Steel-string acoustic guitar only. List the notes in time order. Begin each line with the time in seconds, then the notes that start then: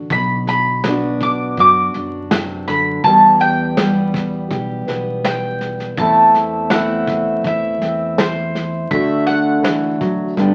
Already playing: D3
0.11 B2
0.87 B3 D4 F#4
1.59 F#4
1.96 D4
2.31 C3
2.68 D3
3.05 E2 E3 G3 B3 G4
3.79 G3 B3 G4
4.51 G4
4.89 B3
5.98 E2 E3 A3 C4 E4
6.73 A3 C4 E4
7.46 E4
7.82 C4
8.92 D3 A3 D4 F#4
9.63 E3
10.01 F#3
10.37 G2 D3 B3 D4 G4